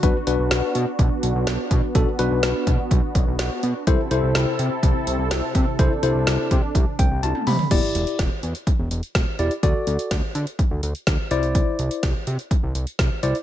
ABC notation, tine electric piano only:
X:1
M:4/4
L:1/16
Q:1/4=125
K:Bphr
V:1 name="Tine electric piano"
[DFB] z [DFB]4 z8 z2 | [DFA] z [DFB]4 z8 z2 | [EAc] z [EAc]4 z8 z2 | [EAc] z [EAc]4 z4 g2 a2 b2 |
[EGd]4 z8 z2 [EGd] z | [FAd]4 z8 z2 [Ecd]2- | [Ecd]4 z8 z2 [Ecd] z |]